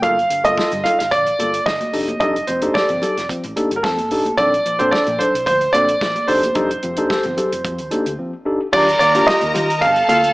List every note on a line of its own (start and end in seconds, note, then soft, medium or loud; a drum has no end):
0.02 0.23 G1 medium
0.02 0.16 A#3 medium
0.02 0.17 F4 medium
0.02 0.16 A4 medium
0.02 0.42 F5 loud
0.02 kick loud
0.02 closed hi-hat medium
0.02 muted conga soft
0.02 low conga medium
0.19 closed hi-hat soft
0.30 0.44 G2 medium
0.30 0.44 D3 medium
0.30 closed hi-hat medium
0.30 muted conga soft
0.44 0.54 G1 medium
0.44 0.56 A#3 medium
0.44 0.57 F4 medium
0.44 0.57 A4 medium
0.44 0.86 D#5 loud
0.44 closed hi-hat soft
0.44 high conga medium
0.58 0.71 F4 medium
0.58 0.71 A4 medium
0.58 kick loud
0.58 snare medium
0.71 0.84 G2 medium
0.71 0.82 G2 medium
0.71 0.84 D3 medium
0.71 closed hi-hat soft
0.84 0.98 F4 medium
0.84 0.99 A4 medium
0.84 0.97 F5 medium
0.84 closed hi-hat medium
0.84 muted conga soft
0.84 low conga medium
0.99 1.09 G1 medium
0.99 1.11 F5 medium
0.99 snare soft
0.99 closed hi-hat soft
1.11 1.31 A#1 medium
1.11 1.26 G2 medium
1.11 1.26 D3 medium
1.11 1.62 D5 loud
1.11 kick loud
1.11 closed hi-hat medium
1.11 muted conga soft
1.26 closed hi-hat soft
1.39 1.59 G1 medium
1.39 1.53 A#3 medium
1.39 1.52 F4 medium
1.39 1.53 A4 medium
1.39 closed hi-hat medium
1.39 high conga medium
1.54 closed hi-hat soft
1.66 1.80 G2 medium
1.66 1.80 D3 medium
1.66 2.19 D#5 medium
1.66 kick loud
1.66 snare loud
1.66 muted conga soft
1.80 closed hi-hat soft
1.80 high conga medium
1.93 2.13 F1 medium
1.93 2.07 D4 medium
1.93 2.07 D#4 medium
1.93 2.07 G4 medium
1.93 2.07 A4 medium
1.93 open hi-hat medium
1.93 muted conga soft
2.08 2.13 G4 soft
2.08 2.13 A4 soft
2.08 closed hi-hat soft
2.08 high conga medium
2.20 2.40 F1 medium
2.20 2.34 D4 medium
2.20 2.34 D#4 medium
2.20 2.35 G4 medium
2.20 2.35 A4 medium
2.20 2.48 D#5 medium
2.20 kick loud
2.20 closed hi-hat medium
2.20 muted conga soft
2.20 low conga medium
2.36 closed hi-hat soft
2.47 2.68 F1 medium
2.47 2.62 F3 medium
2.47 2.62 C4 medium
2.47 2.76 C5 medium
2.47 closed hi-hat medium
2.47 muted conga soft
2.62 2.74 D4 medium
2.62 2.74 D#4 medium
2.62 2.74 G4 medium
2.62 2.75 A4 medium
2.62 closed hi-hat medium
2.62 high conga medium
2.74 2.89 G4 medium
2.74 2.89 A4 medium
2.74 3.25 D5 medium
2.74 kick loud
2.74 snare loud
2.89 2.99 G1 medium
2.89 3.02 F3 medium
2.89 3.02 C4 medium
2.89 closed hi-hat soft
3.02 3.16 G4 medium
3.02 3.16 A4 medium
3.02 closed hi-hat medium
3.02 muted conga soft
3.02 low conga medium
3.17 3.26 F1 medium
3.17 snare soft
3.17 closed hi-hat medium
3.29 3.43 F3 medium
3.29 3.43 C4 medium
3.29 kick loud
3.29 closed hi-hat medium
3.29 muted conga soft
3.43 3.53 A1 medium
3.43 closed hi-hat soft
3.56 3.70 D4 medium
3.56 3.70 D#4 medium
3.56 3.70 G4 medium
3.56 3.70 A4 medium
3.56 closed hi-hat medium
3.56 high conga medium
3.71 3.84 G1 medium
3.71 3.76 G4 soft
3.71 3.77 A4 soft
3.71 closed hi-hat soft
3.76 3.83 A#4 medium
3.83 4.12 F1 medium
3.83 3.98 F3 medium
3.83 3.98 C4 medium
3.83 4.34 A4 medium
3.83 kick loud
3.83 snare loud
3.97 closed hi-hat soft
3.97 high conga medium
4.11 4.31 A1 medium
4.11 4.25 D4 medium
4.11 4.25 D#4 medium
4.11 4.25 G4 medium
4.11 4.25 A4 medium
4.11 open hi-hat medium
4.11 muted conga soft
4.25 4.31 G4 soft
4.25 4.31 A4 soft
4.25 closed hi-hat soft
4.25 high conga medium
4.37 4.58 A#1 medium
4.37 4.52 C4 medium
4.37 4.52 D4 medium
4.37 4.52 A4 medium
4.37 4.81 D5 loud
4.37 kick loud
4.37 closed hi-hat medium
4.37 low conga medium
4.54 closed hi-hat soft
4.66 4.79 A#2 medium
4.66 4.79 F3 medium
4.66 closed hi-hat medium
4.79 4.89 A#1 loud
4.79 4.92 C4 medium
4.79 4.91 D4 medium
4.79 4.92 A4 medium
4.79 4.93 C5 medium
4.79 closed hi-hat soft
4.79 high conga medium
4.91 5.06 D4 medium
4.91 5.06 A4 medium
4.91 5.20 D5 medium
4.91 kick loud
4.91 snare loud
4.91 muted conga soft
5.06 5.19 A#2 medium
5.06 5.16 A#2 medium
5.06 5.19 F3 medium
5.06 closed hi-hat soft
5.19 5.33 D4 medium
5.19 5.34 A4 medium
5.19 5.44 C5 loud
5.19 closed hi-hat medium
5.19 muted conga soft
5.19 low conga medium
5.35 5.43 C2 medium
5.35 closed hi-hat soft
5.46 5.66 D2 medium
5.46 5.61 A#2 medium
5.46 5.61 F3 medium
5.46 5.75 C5 loud
5.46 kick loud
5.46 closed hi-hat medium
5.61 closed hi-hat soft
5.73 5.94 A#1 medium
5.73 5.88 C4 medium
5.73 5.87 D4 medium
5.73 5.87 A4 medium
5.73 6.29 D5 loud
5.73 closed hi-hat medium
5.73 high conga medium
5.88 5.94 D4 soft
5.88 5.94 A4 soft
5.88 closed hi-hat soft
6.01 6.15 A#2 medium
6.01 6.15 F3 medium
6.01 kick loud
6.01 snare loud
6.15 closed hi-hat soft
6.15 high conga medium
6.28 6.49 F1 loud
6.28 6.42 D4 medium
6.28 6.42 D#4 medium
6.28 6.41 G4 medium
6.28 6.41 A4 medium
6.28 8.14 C5 medium
6.28 open hi-hat medium
6.42 6.48 G4 soft
6.42 6.48 A4 soft
6.42 closed hi-hat soft
6.42 high conga medium
6.55 6.75 F1 medium
6.55 6.69 D4 medium
6.55 6.69 D#4 medium
6.55 6.69 G4 medium
6.55 6.69 A4 medium
6.55 kick medium
6.55 closed hi-hat medium
6.55 low conga medium
6.71 closed hi-hat soft
6.83 7.03 F1 medium
6.83 6.97 F3 medium
6.83 6.97 C4 medium
6.83 closed hi-hat medium
6.96 7.09 D4 medium
6.96 7.10 D#4 medium
6.96 7.09 G4 medium
6.96 7.09 A4 medium
6.96 closed hi-hat medium
6.96 high conga medium
7.10 7.24 G4 medium
7.10 7.24 A4 medium
7.10 kick loud
7.10 snare loud
7.23 7.34 G1 medium
7.23 7.37 F3 medium
7.23 7.37 C4 medium
7.23 closed hi-hat soft
7.37 7.51 G4 medium
7.37 7.51 A4 medium
7.37 closed hi-hat medium
7.37 low conga medium
7.52 7.61 F1 medium
7.52 closed hi-hat medium
7.64 7.80 F2 medium
7.64 7.78 F3 medium
7.64 7.78 C4 medium
7.64 kick loud
7.64 closed hi-hat medium
7.64 muted conga soft
7.78 7.88 D#2 medium
7.78 closed hi-hat soft
7.91 8.05 D4 medium
7.91 8.05 D#4 medium
7.91 8.05 G4 medium
7.91 8.05 A4 medium
7.91 closed hi-hat medium
7.91 high conga medium
8.06 8.15 D2 medium
8.06 8.11 G4 soft
8.06 8.11 A4 soft
8.06 closed hi-hat soft
8.19 8.33 F3 medium
8.19 8.32 C4 medium
8.45 8.59 D4 medium
8.45 8.60 D#4 medium
8.45 8.60 G4 medium
8.45 8.60 A4 medium
8.61 8.66 G4 soft
8.61 8.66 A4 soft
8.73 8.93 D#2 loud
8.73 8.87 D4 medium
8.73 8.87 F4 medium
8.73 8.87 G4 loud
8.73 9.80 A#4 medium
8.73 8.98 D5 loud
8.73 9.80 A#5 medium
8.73 kick loud
8.73 crash loud
8.73 low conga medium
8.89 closed hi-hat soft
8.99 9.20 D#2 medium
8.99 9.14 D#3 medium
8.99 9.14 A#3 medium
8.99 9.25 D5 loud
8.99 closed hi-hat medium
9.14 9.27 D4 medium
9.14 9.26 F4 medium
9.14 9.27 G4 loud
9.14 closed hi-hat medium
9.14 high conga medium
9.27 9.41 F4 medium
9.27 9.42 G4 medium
9.27 9.83 D#5 loud
9.27 kick loud
9.27 snare loud
9.41 9.52 D#2 medium
9.41 9.54 D#3 medium
9.41 9.54 A#3 medium
9.41 closed hi-hat medium
9.54 9.84 D#3 loud
9.54 9.68 F4 medium
9.54 9.68 G4 medium
9.54 closed hi-hat medium
9.54 muted conga soft
9.54 low conga medium
9.70 closed hi-hat medium
9.81 10.01 G1 loud
9.81 9.95 G2 medium
9.81 9.95 D3 medium
9.81 10.33 A4 medium
9.81 10.07 F5 loud
9.81 10.33 A5 medium
9.81 kick loud
9.81 closed hi-hat medium
9.81 muted conga soft
9.96 closed hi-hat soft
10.08 10.29 D2 medium
10.08 10.22 A#3 medium
10.08 10.22 F4 medium
10.08 10.22 A4 medium
10.08 10.33 F5 loud
10.08 closed hi-hat medium
10.08 muted conga soft
10.08 high conga medium
10.23 10.28 F4 soft
10.23 10.28 A4 soft
10.23 closed hi-hat soft